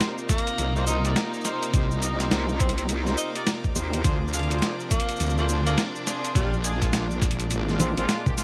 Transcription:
Already playing: C3 A#3 C4 D#4 F4 G4 A#4 C5 D5
0.01 snare, closed hi-hat, shaker
0.18 shaker
0.29 A#3, kick, snare, closed hi-hat, shaker
0.38 closed hi-hat
0.47 closed hi-hat, shaker
0.58 C2, closed hi-hat, shaker
0.76 A#3 D#4 G4 A#4 C5, shaker
0.87 D#4, shaker
1.05 D#4 G4 A#4 D5, closed hi-hat, shaker
1.16 snare, closed hi-hat, shaker
1.34 shaker
1.41 snare, closed hi-hat, shaker
1.45 D#4 G4 A#4 C5, shaker
1.63 closed hi-hat, shaker
1.74 C2 D#4 G4 A#4 C5, kick, closed hi-hat, shaker
1.91 shaker
2.02 D#4 G4 A#4 D#5, closed hi-hat, shaker
2.20 D#4 G4 A#4 C5, snare, closed hi-hat, shaker
2.31 C2, snare, closed hi-hat, shaker
2.49 shaker
2.60 C4, kick, closed hi-hat, shaker
2.69 closed hi-hat
2.77 C4, closed hi-hat, shaker
2.89 closed hi-hat, shaker
3.07 D#4 G4 A#4 C5, snare, shaker
3.18 D#4, shaker
3.35 D#4 G4 A#4 D5, closed hi-hat, shaker
3.47 snare, closed hi-hat, shaker
3.64 kick, shaker
3.76 D#2 D#4 G4 A#4 C5, shaker
3.93 closed hi-hat, shaker
4.04 D2 C3 F3 C4 D4 F4 G#4 C5, kick, closed hi-hat, shaker
4.28 shaker
4.33 D4 F4 G#4 F5, closed hi-hat, shaker
4.39 closed hi-hat
4.43 closed hi-hat
4.51 D4 F4 G#4 C5, closed hi-hat, shaker
4.53 closed hi-hat
4.59 snare, closed hi-hat
4.62 closed hi-hat, shaker
4.80 shaker
4.91 A#3, kick, closed hi-hat, shaker
5.00 closed hi-hat
5.09 closed hi-hat, shaker
5.10 shaker
5.16 D2, closed hi-hat, shaker
5.20 shaker
5.26 shaker
5.30 shaker
5.38 A#3 D4 F4 G#4 C5, shaker
5.49 shaker
5.66 A#3 D4 F4 G#4 D5, closed hi-hat, shaker
5.78 snare, closed hi-hat, shaker
5.96 shaker
6.07 D4 F4 G#4 C5, snare, closed hi-hat, shaker
6.24 closed hi-hat, shaker
6.35 A#1 A#2 G3 G#3 A#3 D4 F4, kick, closed hi-hat, shaker
6.53 shaker
6.64 G#3 A#3 D4 G#4, closed hi-hat, shaker
6.82 G#3 A#3 D4 F4, kick, snare, closed hi-hat, shaker
6.93 A#1, snare, closed hi-hat, shaker
7.11 shaker
7.22 kick, snare, closed hi-hat, shaker
7.31 closed hi-hat
7.40 closed hi-hat, shaker
7.51 A1, closed hi-hat, shaker
7.68 G#3 A#3 D4 F4, snare, shaker
7.79 A#1 C4, closed hi-hat, high tom, shaker
7.97 G#1 G#3 A#3 C4 D4 F4, closed hi-hat, shaker
8.09 snare, closed hi-hat, shaker
8.26 G#3 A#3 D4 G4, kick, mid tom, shaker
8.37 G#3 A#3 D4 F4, snare, closed hi-hat, shaker

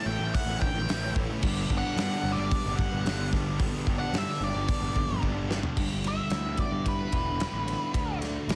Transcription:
Already playing: A2
0.06 A1 E3 A3 C#4 G5, muted distorted electric guitar stroke
0.10 E4
0.19 A1 A3 C#4 E4
0.35 F#5, kick, open hi-hat
0.46 A1 C#4 E4
0.51 A3
0.61 E3 A3 C#4 E4 G5, muted distorted electric guitar stroke, kick
0.74 A1, muted distorted electric guitar stroke
0.89 A2 E3 A3 C#4 E4, snare, open hi-hat
1.02 A3 C#4 E4
1.16 E3 A3 C#4 E4, kick
1.29 A3 C#4 E4
1.42 G1 G2 D3 G3 B3 D4, kick, crash
1.70 G1 D3 G3 B3 D4, kick
1.78 F#5
1.83 G3 B3 D4
1.96 G2 D3 G3 B3 D4, snare, open hi-hat
2.23 G1 D3 G3 B3 D4, muted distorted electric guitar stroke
2.32 D5
2.37 G1 G3 B3 D4
2.51 kick, open hi-hat
2.63 G1 G3 B3 D4
2.75 D3 F#5, muted distorted electric guitar stroke, kick
2.79 G3 B3 D4
2.92 G1, muted distorted electric guitar stroke
3.04 G2 D3 G3 B3 D4, snare, open hi-hat
3.19 G3 B3 D4
3.33 D3 G3 B3 D4, kick, snare
3.46 G3 B3 D4
3.58 G2 D3 G3 B3 D4, kick, open hi-hat
3.86 G1 D3 G3 B3 D4, kick
3.99 G3 B3 D4 F#5
4.13 G2 D3 G3 B3 D4, snare, open hi-hat
4.18 E5
4.40 G1 D3 G3 B3 D4 D5, muted distorted electric guitar stroke
4.54 G1 G3 B3 D4
4.69 kick, open hi-hat
4.81 G1 G3 B3 D4
4.94 D3 G3 B3 D4, muted distorted electric guitar stroke, kick
5.08 G1, muted distorted electric guitar stroke
5.22 G2 D3 G3 B3 D4, kick
5.35 G3 B3 D4
5.49 D3 G3 B3 D4, snare
5.63 G3 B3 D4, floor tom
5.76 G1 G2 D3 G3, kick, crash
6.04 G3 E5, snare, ride
6.30 D2 E4, snare, ride
6.57 B3 D5, kick, ride
6.72 G2
6.85 E3 B4, kick, ride
7.12 E1 G2 D3 G3, kick, ride
7.39 G2 D3 G3 E4, snare, ride
7.53 A1
7.66 B3, ride
7.92 D2 D3 A3 D4, kick, ride
8.21 A3, snare, ride
8.48 A1 E4, snare, ride

